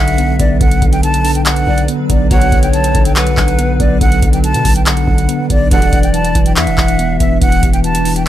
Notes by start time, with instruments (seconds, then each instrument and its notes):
Already playing: 808-style bass B1, tine electric piano D3, ambient pad F#3 D4 B4, pan flute E5, flute F#5, impact
0.08 closed hi-hat
0.18 tine electric piano B3, closed hi-hat
0.39 808-style bass B1, tine electric piano B3, flute D5, kick, closed hi-hat
0.61 808-style bass B1, tine electric piano D3, flute F#5, kick, closed hi-hat
0.71 closed hi-hat
0.82 808-style bass B1, tine electric piano D3, kick, closed hi-hat
0.92 flute G5, closed hi-hat
1.03 tine electric piano D3, flute A5, closed hi-hat
1.14 closed hi-hat
1.24 tine electric piano D3, open hi-hat
1.35 flute G5, closed hi-hat
1.46 tine electric piano D3, flute F#5, clap, closed hi-hat
1.56 closed hi-hat
1.67 808-style bass B1, tine electric piano D3, pan flute D5
1.78 closed hi-hat
1.88 tine electric piano B3, closed hi-hat
2.09 808-style bass B1, tine electric piano B3, flute D5, kick, closed hi-hat
2.31 808-style bass B1, brass ensemble B2 D3 F#3, tine electric piano D3, pan flute C#5, flute F#5, kick, closed hi-hat
2.42 closed hi-hat
2.52 808-style bass B1, tine electric piano D3, kick, closed hi-hat
2.63 flute G5, closed hi-hat
2.73 tine electric piano D3, flute A5, closed hi-hat
2.84 closed hi-hat
2.94 808-style bass B1, tine electric piano D3, kick, closed hi-hat
3.05 flute G5, closed hi-hat
3.16 tine electric piano D3, pan flute B4, flute F#5, clap, closed hi-hat
3.27 closed hi-hat
3.37 808-style bass B1, tine electric piano D3, kick, clap
3.48 closed hi-hat
3.59 tine electric piano B3, closed hi-hat
3.80 808-style bass B1, tine electric piano B3, flute D5, kick, closed hi-hat
4.01 808-style bass B1, tine electric piano D3, flute F#5, kick, closed hi-hat
4.12 closed hi-hat
4.22 808-style bass B1, tine electric piano D3, kick, closed hi-hat
4.33 flute G5, closed hi-hat
4.44 tine electric piano D3, flute A5, closed hi-hat
4.54 808-style bass B2, closed hi-hat
4.65 808-style bass B1, tine electric piano D3, kick, open hi-hat
4.76 flute G5, closed hi-hat
4.86 tine electric piano D3, flute F#5, clap, closed hi-hat
4.97 closed hi-hat
5.07 808-style bass B1, tine electric piano D3, kick
5.18 closed hi-hat
5.29 tine electric piano B3, closed hi-hat
5.50 808-style bass B1, tine electric piano B3, flute D5, kick, closed hi-hat
5.71 808-style bass E1, brass ensemble G2 B2 D3, tine electric piano E3, ambient pad E3 G4, pan flute D5, flute F#5, kick, closed hi-hat
5.82 closed hi-hat
5.93 808-style bass E1, tine electric piano E3, kick, closed hi-hat
6.03 flute G5, closed hi-hat
6.14 tine electric piano E3, flute A5, closed hi-hat
6.25 closed hi-hat
6.35 808-style bass E1, tine electric piano E3, kick, closed hi-hat
6.46 flute G5, closed hi-hat
6.56 808-style bass E2, tine electric piano E3, pan flute E5, flute F#5, clap, closed hi-hat
6.67 808-style bass E1, closed hi-hat
6.78 808-style bass E1, tine electric piano E3, kick, clap
6.88 closed hi-hat
6.99 tine electric piano B3, closed hi-hat
7.20 808-style bass E1, tine electric piano B3, flute E5, kick, closed hi-hat
7.41 808-style bass E1, tine electric piano E3, flute F#5, kick, closed hi-hat
7.52 closed hi-hat
7.63 808-style bass E1, tine electric piano E3, kick, closed hi-hat
7.73 flute G5, closed hi-hat
7.84 tine electric piano E3, flute A5, closed hi-hat
7.95 closed hi-hat
8.05 tine electric piano E3, open hi-hat
8.16 flute G5, closed hi-hat